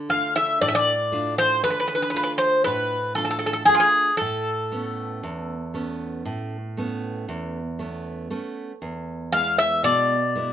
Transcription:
Already playing: D3
0.09 A3 D4 F4 F5
0.36 E5
0.61 A2 D5
0.68 E5
0.75 D5
1.12 A3 D4 F4
1.38 C5
1.64 D3 B4
1.70 B4
1.80 B4
1.88 B4
1.95 B4
2.02 B4
2.10 B4
2.14 A3 D4 F4 B4
2.23 B4
2.38 C5
2.64 A2 B4
3.15 A3 D4 F4 A4
3.25 A4
3.31 A4
3.39 A4
3.46 A4
3.53 A4
3.65 A3 D4 G#4
3.69 F4
3.75 F4
3.80 G#4
4.17 A2 A4
4.72 A3 B3 C#4
5.23 E2
5.74 A3 B3 C#4
6.25 A2
6.77 A3 B3 C#4
7.29 E2
7.79 A3 B3 C#4
8.30 A3 B3 C#4
8.82 E2
9.32 G#3 B3 E4 F5
9.58 E5
9.83 B2 D5
10.35 G#3 B3 E4

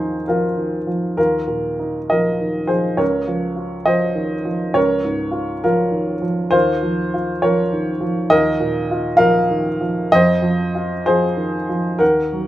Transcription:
Already playing: D#2 F3 D#4 G#4 C5
0.28 F3 F4 A#4
0.57 D#3
0.87 F3
1.17 D#2 F4 A#4
1.47 A#2
1.79 D#4
2.10 F3 A#4 D#5
2.41 D#3
2.67 F3 G#4 C5
2.97 C#2 A#4 C#5
3.27 F3
3.56 F4
3.85 F3 C5 D#5
4.15 D#3
4.45 F3
4.74 C#2 A#4 C#5
5.05 G#2
5.31 F4
5.64 F3 F4 A#4
5.91 D#3
6.22 F3
6.51 D#2 F4 C5
6.83 F3
7.14 F4
7.42 F3 A#4 C#5
7.72 D#3
8.01 F3
8.30 D#2 A#4 D#5
8.60 A#2
8.91 F4
9.17 F3 A#4 F5
9.51 D#3
9.81 F3
10.12 F2 C5 D#5
10.42 F3
10.75 F4
11.06 F3 G#4 C5
11.37 D#3
11.69 F3
11.99 D#2 A#4 F#5
12.33 F#3

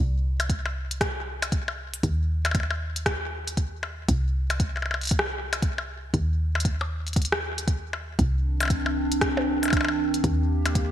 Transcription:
0.00 C2
0.40 closed hi-hat, percussion blips
0.50 kick, closed hi-hat
0.66 percussion blips
0.91 closed hi-hat
1.01 kick, cross-stick, closed hi-hat
1.42 closed hi-hat, percussion blips
1.52 kick, closed hi-hat
1.68 percussion blips
1.94 closed hi-hat
2.03 D#2, kick, closed hi-hat
2.45 closed hi-hat, percussion blips
2.51 kick, closed hi-hat, percussion blips
2.55 percussion blips
2.60 percussion blips
2.63 percussion blips
2.71 percussion blips
2.96 closed hi-hat
3.06 kick, cross-stick, closed hi-hat
3.48 closed hi-hat
3.57 kick, closed hi-hat
3.83 percussion blips
4.09 C2, kick, closed hi-hat
4.50 closed hi-hat, percussion blips
4.60 kick, closed hi-hat
4.76 percussion blips
4.82 percussion blips
4.86 percussion blips
4.91 percussion blips
4.94 percussion blips
5.01 closed hi-hat
5.03 closed hi-hat
5.05 closed hi-hat
5.07 closed hi-hat
5.09 kick, closed hi-hat
5.11 closed hi-hat
5.19 cross-stick
5.53 closed hi-hat, percussion blips
5.62 kick, closed hi-hat
5.78 percussion blips
6.14 D#2, kick, closed hi-hat
6.55 percussion blips
6.60 closed hi-hat
6.65 kick, closed hi-hat
6.81 percussion blips
7.07 closed hi-hat
7.13 kick, closed hi-hat
7.16 closed hi-hat
7.22 closed hi-hat
7.25 closed hi-hat
7.32 cross-stick
7.58 closed hi-hat
7.68 kick, closed hi-hat
7.93 percussion blips
8.19 C2 D#3 C4 D4, kick, closed hi-hat
8.60 closed hi-hat, percussion blips
8.63 percussion blips
8.65 percussion blips
8.68 kick, closed hi-hat, percussion blips
8.86 percussion blips
9.12 closed hi-hat
9.21 kick, cross-stick, closed hi-hat
9.37 percussion blips
9.63 closed hi-hat, percussion blips
9.65 percussion blips
9.68 percussion blips
9.70 kick, closed hi-hat, percussion blips
9.73 percussion blips
9.77 percussion blips
9.81 percussion blips
9.85 percussion blips
9.89 percussion blips
10.14 closed hi-hat
10.24 D#2 A#3 G4, kick, closed hi-hat
10.66 closed hi-hat, percussion blips
10.75 kick, closed hi-hat

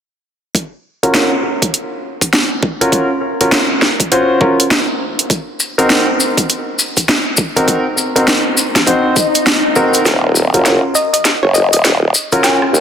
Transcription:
0.55 kick, closed hi-hat
1.03 C#4 F4 F#4 A#4, closed hi-hat
1.14 snare, closed hi-hat
1.62 kick, closed hi-hat
1.74 closed hi-hat
2.21 kick, closed hi-hat
2.33 snare, closed hi-hat
2.63 kick
2.81 C#4 F4 F#4 A#4, closed hi-hat
2.92 kick, closed hi-hat
3.41 C#4 F4 F#4 A#4, closed hi-hat
3.52 snare, closed hi-hat
3.82 snare
4.00 kick, closed hi-hat
4.12 C#4 F4 F#4 C5, closed hi-hat
4.41 C#4 F4 F#4 A#4, kick
4.60 closed hi-hat
4.71 snare, closed hi-hat
5.19 closed hi-hat
5.30 kick, closed hi-hat, maracas
5.60 maracas
5.78 C4 D#4 F#4 A#4, closed hi-hat, maracas
5.90 snare, closed hi-hat, maracas
6.20 maracas
6.38 kick, closed hi-hat, maracas
6.49 closed hi-hat, maracas
6.79 maracas
6.97 kick, closed hi-hat, maracas
7.08 snare, closed hi-hat, maracas
7.37 kick, maracas
7.56 C4 D#4 F#4 A#4, closed hi-hat, maracas
7.68 kick, closed hi-hat, maracas
7.97 maracas
8.16 C4 D#4 F#4 A#4, closed hi-hat, maracas
8.28 snare, closed hi-hat, maracas
8.57 maracas
8.75 kick, snare, closed hi-hat, maracas
8.87 C4 D#4 F#4 C5, kick, closed hi-hat, swell, maracas
9.16 kick, maracas
9.35 closed hi-hat, maracas
9.46 snare, closed hi-hat, maracas
9.76 C4 D#4 F#4 A#4, maracas
9.94 closed hi-hat, maracas
10.05 D#1, snare, closed hi-hat, maracas
10.35 maracas
10.53 F#1 C#4 F4 F#4 A#4, closed hi-hat, maracas
10.65 snare, closed hi-hat, maracas
10.95 D#5, maracas
11.13 D#5, closed hi-hat, maracas
11.25 snare, closed hi-hat, maracas
11.43 F#1 C#5
11.54 D#5, maracas
11.73 D#1 D#5, closed hi-hat, maracas
11.84 snare, closed hi-hat, maracas
12.14 maracas
12.32 C#4 F4 F#4 A#4, closed hi-hat, maracas
12.44 G#5, snare, closed hi-hat, maracas
12.62 cross-stick
12.73 D#2, maracas

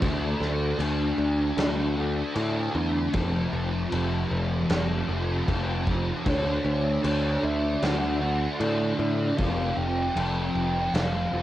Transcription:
0.01 D2 D3 A3 D4, kick, crash
0.41 D2, snare
0.78 D2 D3 A3 D4, crash
1.18 D2
1.57 D2, snare, crash
1.96 A3 D4
2.34 A2 D3 A3 D4, crash
2.74 E2 A3 D4
3.12 F1 F2 C3 F3, kick, crash
3.53 F1
3.91 F1 F2 C3 F3, crash
4.31 F1
4.69 F1, snare, crash
5.08 F1 C3 F3
5.47 F1 F2 C3 F3, kick, crash
5.86 C3 F3, kick
6.24 D2 D3 A3 D4, kick, crash
6.29 C#5
6.65 D2 C#5
7.02 D2 D3 A3 D4, crash
7.07 C#5
7.43 D2 E5
7.82 D2 F#5, snare, crash
8.20 A3 D4
8.59 A2 D3 A3 D4 D5, crash
8.99 A2 A3 D4 D5
9.37 F1 F2 C3 F5, kick, crash
9.41 F3
9.77 F1 G5
10.15 F1 F2 C3 F3, crash
10.54 F1 G5
10.94 F1 F5, snare, crash
11.32 F1 C3 F3

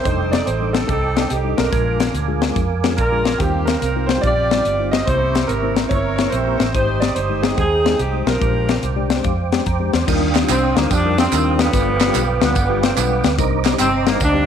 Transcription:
Already playing: G5
0.04 F1 G3 D4 D#4 A4 C5 D#5 D6, kick, closed hi-hat
0.31 D5, snare, closed hi-hat
0.46 A1 C5, closed hi-hat
0.61 G3 D4 D#4 A4
0.73 A4, snare, closed hi-hat
0.82 G3 D4 D#4 A4
0.88 C2 C4 D#4 A4, kick, closed hi-hat
1.16 G3 D4 D#4 A4, snare, closed hi-hat
1.30 C2 G4, closed hi-hat
1.44 G3 D4 D#4 G4
1.57 B1 D4 F4 A#4, snare, closed hi-hat
1.72 A#1 A#2 G#3 D4 F4 A#4 F5 G#5 D6, kick, closed hi-hat
2.00 snare, closed hi-hat
2.14 D2, closed hi-hat
2.28 G#3 D4 F4 G#4
2.42 snare, closed hi-hat
2.49 G#3 D4 F4 G#4
2.56 F2, kick, closed hi-hat
2.84 G#3 D4 F4 G#4, snare, closed hi-hat
2.97 A#1 D4 F4 A#4, kick, closed hi-hat
3.12 G#3 D4 F4 G#4
3.25 snare, closed hi-hat
3.38 D#2 D#3 G3 A#3 C4 D#4 F4 G4 C5 G5, kick, closed hi-hat
3.65 A#4, snare, closed hi-hat
3.79 C2 A#4, closed hi-hat
3.96 G3 D#4 F4 A#4
4.07 C5, snare, closed hi-hat
4.16 G3 D#4 F4 G4
4.21 A#1 F4 G4 D5, kick, closed hi-hat
4.51 G3 D#4 F4 C5, snare, closed hi-hat
4.65 G1, closed hi-hat
4.78 G3 D#4 F4 C5
4.91 D#5, snare, closed hi-hat
5.06 C2 C3 A#3 C#4 E4 G4 C5 E5 A#5 C#6, kick, closed hi-hat
5.35 snare, closed hi-hat
5.47 G#1 A#4, closed hi-hat
5.63 A#3 C#4 E4 C5
5.76 C5, snare, closed hi-hat
5.84 A#3 C#4 E4 C5
5.89 G1 E4 A#4 C#5, kick, closed hi-hat
6.16 A#3 C#4 E4 C#5, snare, closed hi-hat
6.30 A#1 E4 C5, closed hi-hat
6.34 G4
6.47 A#3 C#4 E4 G4
6.58 A1 C5, snare, closed hi-hat
6.74 G#1 G#2 G#3 D#4 G4 C5 G5 D#6, kick, closed hi-hat
7.00 D5, snare, closed hi-hat
7.15 G1 C5, closed hi-hat
7.30 G#3 D#4 G4 C5
7.42 G#4, snare, closed hi-hat
7.51 G#3 D#4 G4 D#5
7.58 D#2 C4 D#4 G#4, kick, closed hi-hat
7.84 G#3 D#4 G4 C5, snare, closed hi-hat
7.99 C2 G4, closed hi-hat
8.13 G#3 D#4 G4 C5
8.26 B1 D4 F4 A#4, snare, closed hi-hat
8.41 A#1 A#2 G#3 D4 G4 C5 D6, kick, closed hi-hat
8.69 snare, closed hi-hat
8.83 C2, closed hi-hat
8.96 G#3 D4 G4 D5
9.10 D5, snare, closed hi-hat
9.17 G#3 D4 G4 C5
9.24 F2 F5, kick, closed hi-hat
9.52 G#3 D4 G4 D5 G5, snare, closed hi-hat
9.66 F2 A#5, kick, closed hi-hat
9.80 G#3 D4 G4 C5
9.93 E2 C6, snare, closed hi-hat
10.07 D#2 D#3 G3 D4 D#4 F4 A#4 F5 G5 D#6, kick, crash, tambourine
10.35 snare, clap, closed hi-hat, tambourine
10.42 G3 D4 D#4 F4 G4
10.49 C2 C4, clap, closed hi-hat, tambourine
10.76 D2 G3 A#3 D4 D#4 F4 C5, snare, closed hi-hat, tambourine
10.90 F2 F3 G3 D4, kick, closed hi-hat, tambourine
11.05 G3 D4 D#4 F4 A#4
11.17 F3 G3 C4, snare, closed hi-hat, tambourine
11.32 D#2 G3 D4 D#4 F4 A#4, clap, closed hi-hat, tambourine
11.58 D3 F3 B3, snare, closed hi-hat, tambourine
11.73 G1 G2 G3 B3 D4 F4 B4 F5 D6, kick, closed hi-hat, tambourine
12.00 snare, clap, closed hi-hat, tambourine
12.07 G3 B3 D4 F4 G4
12.15 B1, clap, closed hi-hat, tambourine
12.41 D2 D3 F3 G3 B3 D4 F4 B4, snare, closed hi-hat, tambourine
12.55 G1, kick, closed hi-hat, tambourine
12.69 G3 B3 D4 F4 G4
12.83 C4, snare, closed hi-hat, tambourine
12.97 B1 D3 F3 G3 B3 D4 F4 B4, clap, closed hi-hat, tambourine
13.24 D2, snare, closed hi-hat, tambourine
13.38 C2 C3 G3 C4 D4 D#4 A#4 C5 D#5 A#5 D6, kick, closed hi-hat, tambourine
13.64 snare, clap, closed hi-hat, tambourine
13.73 G3 C4 D4 D#4 G4
13.79 G1 C4, clap, closed hi-hat, tambourine
14.06 G3 A#3 C4 D4 D#4 A#4, snare, closed hi-hat, tambourine
14.20 D2 G3 A#3 D4, kick, closed hi-hat, tambourine
14.34 G3 C4 D4 D#4 G4

